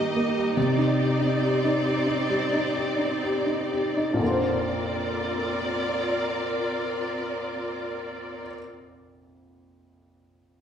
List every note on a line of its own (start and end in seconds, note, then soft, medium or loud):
0.00 0.53 G2 soft
0.00 0.54 G2 soft
0.00 0.53 D#3 soft
0.00 0.37 G3 soft
0.00 0.17 A#3 soft
0.00 0.54 A#3 soft
0.00 4.17 D#4 medium
0.00 4.18 G4 medium
0.00 0.54 D#5 medium
0.17 0.56 A#3 soft
0.37 0.57 G3 soft
0.57 4.17 C3 soft
0.57 4.18 C4 medium
0.57 4.18 D5 medium
0.78 1.20 D#4 soft
1.00 1.41 G4 soft
1.21 1.62 D#4 soft
1.43 1.84 G4 soft
1.64 2.05 D#4 soft
1.86 2.74 G4 soft
2.07 2.52 D#4 soft
2.30 4.17 G3 soft
2.53 2.97 D#4 soft
2.76 3.22 G4 soft
2.99 3.45 D#4 soft
3.23 3.70 G4 soft
3.47 3.96 D#4 soft
3.72 4.20 G4 soft
3.97 4.21 D#4 soft
4.13 8.42 A#1 soft
4.13 8.46 F2 soft
4.20 8.49 D3 soft
4.20 8.53 A#3 soft
4.20 8.50 C4 soft
4.20 8.50 F4 soft
4.20 8.49 A#4 soft
4.20 8.50 D5 medium
4.27 8.56 F4 soft
4.27 8.59 C5 soft